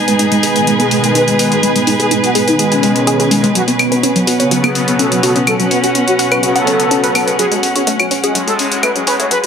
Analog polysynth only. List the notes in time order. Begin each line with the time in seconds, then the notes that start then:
0.08 G#3
0.19 G#3
0.32 G#3
0.56 G#3
0.67 G#3
0.80 G#4
0.91 G#3
1.04 G#3
1.15 B4
1.28 G#3
1.39 B4
1.52 G#3
1.63 B4
1.76 G#3
1.87 G#3
2.00 G#4
2.11 G#3
2.24 F#4
2.35 G#3
2.48 D#4
2.59 G#3
2.72 C#4
3.55 F#4
3.68 B3
3.92 B3
4.03 B3
4.16 B3
4.40 B3
4.51 B3
4.64 G#4
4.75 B3
4.88 B3
4.99 A4
5.12 B3
5.23 A4
5.36 B3
5.47 A4
5.60 B3
5.71 B3
5.84 F#4
5.95 B3
6.08 F#4
6.19 B3
6.32 F#4
6.43 B3
6.56 A4
7.39 G#4
7.52 C#4
7.76 C#4
7.87 C#4
8.00 C#4
8.23 C#4
8.35 C#4
8.47 A4
8.59 C#4
8.72 C#4
8.83 B4
8.96 C#4
9.07 B4
9.20 C#4
9.31 B4